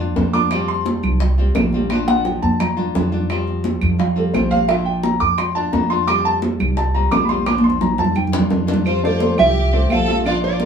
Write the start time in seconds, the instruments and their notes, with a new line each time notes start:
Already playing: upright bass F2
0.00 nylon-string guitar A#3 D4 F4, high conga
0.16 upright bass F2, nylon-string guitar F3 A#3 D4 F4, high bongo, low bongo, high conga
0.33 nylon-string guitar A#3 D4 F4, grand piano D6, high conga
0.51 nylon-string guitar F3 G3 C4 F4, high bongo, claves
0.68 grand piano C6, high bongo, high conga
0.86 high bongo, high conga
1.03 upright bass C2, high bongo, high conga, low conga, claves
1.20 muted nylon-string guitar stroke, high bongo, high conga, low conga
1.38 nylon-string guitar G3 C4 F4, high bongo, high conga
1.55 upright bass A#1, nylon-string guitar F3 G3 C4 F4, high bongo, low bongo, high conga, claves
1.73 nylon-string guitar G3 C4 F4, high conga
1.90 nylon-string guitar F3 A#3 D4 F4, high bongo, high conga, claves
2.08 grand piano F#5, high conga
2.25 grand piano G5, high bongo, low conga
2.42 upright bass F2, grand piano A5, high bongo, high conga
2.60 grand piano A#5, muted nylon-string guitar stroke, high bongo, low conga, claves
2.77 nylon-string guitar A#3 D4 F4, high bongo, low conga
2.95 upright bass F2, nylon-string guitar F3 A#3 D4 F4, high bongo, low bongo, low conga
3.12 nylon-string guitar A#3 D4 F4, low conga
3.30 nylon-string guitar F3 G3 C4 F4, high bongo, high conga, claves
3.47 high bongo, high conga
3.64 high bongo, high conga
3.81 upright bass F2, high bongo, high conga, low conga, claves
3.99 grand piano F5, muted nylon-string guitar stroke, high bongo, high conga, low conga
4.16 nylon-string guitar G3 C4 F4, grand piano A4, high bongo, high conga
4.33 upright bass A#1, nylon-string guitar F3 G3 C4 F4, grand piano C5, high bongo, low bongo, high conga, claves
4.50 nylon-string guitar G3 C4 F4, grand piano F5, high conga
4.68 nylon-string guitar F3 A#3 D4 F4, grand piano E5, high bongo, claves
4.85 grand piano G5, high bongo, high conga
5.03 grand piano A#5, high bongo, high conga
5.20 upright bass F2, grand piano D6, high bongo, high conga
5.38 grand piano C6, muted nylon-string guitar stroke, high bongo, high conga, claves
5.55 nylon-string guitar A#3 D4 F4, grand piano A5, high bongo, high conga
5.73 upright bass F2, nylon-string guitar F3 A#3 D4 F4, grand piano A#5, high bongo, low bongo, high conga
5.90 nylon-string guitar A#3 D4 F4, grand piano C6
6.07 nylon-string guitar F3 G3 C4 F4, grand piano D6, high bongo, high conga, claves
6.25 grand piano A5, high bongo, high conga
6.42 high bongo, high conga
6.60 upright bass C2, high bongo, high conga, low conga, claves
6.77 grand piano A5, muted nylon-string guitar stroke, high bongo, high conga
6.94 nylon-string guitar G3 C4 F4, grand piano A#5, high bongo, high conga
7.11 upright bass A#1, nylon-string guitar F3 G3 C4 F4, grand piano D6, high bongo, low bongo, high conga, claves
7.25 grand piano B5
7.29 nylon-string guitar G3 C4 F4, grand piano C6, high conga
7.46 nylon-string guitar F3 A#3 D4 F4, grand piano D6, high bongo, high conga, claves
7.58 high conga
7.64 grand piano C6, high bongo
7.70 high conga
7.81 grand piano A#5, high bongo, low conga
7.98 upright bass F2, grand piano A5, high bongo
8.04 low conga
8.15 grand piano G5, muted nylon-string guitar stroke, low conga, claves
8.27 low conga
8.32 nylon-string guitar A#3 D4 F4, low bongo
8.39 low conga
8.50 upright bass F2, nylon-string guitar F3 A#3 D4 F4, low bongo, low conga
8.67 nylon-string guitar A#3 D4 F4, low bongo
8.74 low conga
8.85 nylon-string guitar F3 G3 C4 F4 C5, violin section F4, high conga, claves
9.03 grand piano A3 A4 C5, violin section F4, nylon-string guitar D5, high conga
9.20 grand piano A3 A4 C5, high conga
9.38 upright bass C2, grand piano F3 F4 G5, violin section G4, nylon-string guitar E5, high conga, low conga, claves
9.56 muted nylon-string guitar stroke, high conga
9.73 nylon-string guitar G3 C4 F4, grand piano A3 A4 C5, high conga
9.90 upright bass A#1, nylon-string guitar F3 G3 C4 F4 F5, violin section A4, high conga, claves
10.07 grand piano F3 F4 F5, nylon-string guitar G3 C4 F4, high conga
10.24 nylon-string guitar F3 A#3 D4 F4 D5, grand piano F3 F4 F5, violin section F4, high conga, claves
10.42 violin section F4, nylon-string guitar D5, high conga
10.60 grand piano A#3 A#4 D5, high conga